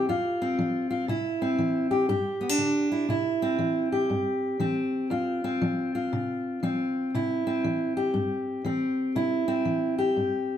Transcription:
0.09 F2 F4
0.42 C4
0.59 F3
0.91 F4
1.08 C3 E4
1.42 C4
1.58 E3
1.91 G4
2.09 G2 G4
2.41 B3
2.49 D4
2.58 D3
2.92 E4
3.09 C3 E4
3.42 C4
3.59 E3
3.92 G4
4.10 G2
4.60 E3 C4
5.10 F2 F4
5.44 C4
5.62 F3
5.95 F4
6.13 C3
6.63 F3 C4
7.15 C3 E4
7.47 C4
7.64 E3
7.97 G4
8.14 G2
8.65 E3 C4
9.15 C3 E4
9.48 C4
9.65 E3
9.98 G4
10.16 G2

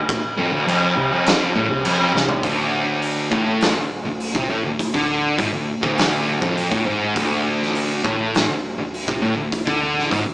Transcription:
Already playing: D1 D2
0.09 kick, crash
0.38 F1 F2
0.51 D1 D2
0.67 F1 F2, crash
0.96 C2 C3
1.11 F1 F2
1.26 snare, crash
1.55 A1 A2
1.69 C2 C3
1.85 F1 F2, crash
2.15 C2 C3, snare
2.29 floor tom
2.43 D1 D2, kick, open hi-hat
3.02 open hi-hat
3.31 A1 A2, kick
3.61 snare, open hi-hat
3.75 D1 D2
4.04 D1 D2
4.20 open hi-hat
4.34 C2 C3, kick
4.48 A1 A2
4.63 D1 D2
4.79 kick, open hi-hat
4.94 D2 D3, kick
5.39 G#1 G#2, kick, open hi-hat
5.53 D1 D2
5.83 D1 D2, kick
5.98 snare, open hi-hat
6.41 F1 F2, kick
6.58 open hi-hat
6.71 A1 A2, kick
6.86 G#1 G#2
7.16 D1 D2, kick, open hi-hat
7.62 snare
7.75 open hi-hat
8.04 A1 A2, kick
8.34 snare, open hi-hat
8.48 D1 D2
8.78 D1 D2
8.94 open hi-hat
9.07 C2 C3, kick
9.22 A1 A2
9.36 D1 D2
9.52 kick, open hi-hat
9.65 D2 D3, kick
9.99 snare
10.10 G#1 G#2, kick, open hi-hat
10.25 D1 D2

